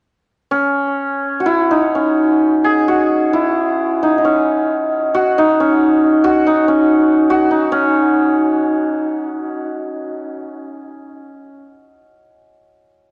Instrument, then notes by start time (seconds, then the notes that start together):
santur
0.51 C#4
1.40 F#4
1.46 E4
1.71 D#4
1.95 C#4
2.65 G#4
2.88 F#4
3.33 E4
4.03 D#4
4.18 D#4
4.25 C#4
5.15 F#4
5.38 D#4
5.60 C#4
6.24 F#4
6.47 D#4
6.68 C#4
7.30 F#4
7.51 D#4
7.72 C#4